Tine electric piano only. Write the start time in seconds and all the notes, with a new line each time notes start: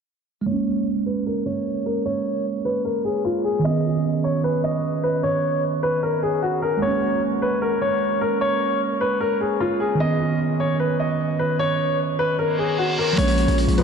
0.41 G#3
0.46 A#3
0.51 C#4
3.59 D#3
3.64 B3
3.69 C#4
6.77 G#3
6.82 A#3
6.87 C#4
9.95 D#3
10.00 B3
10.05 C#4
13.13 F3 G#3
13.20 A#3 C#4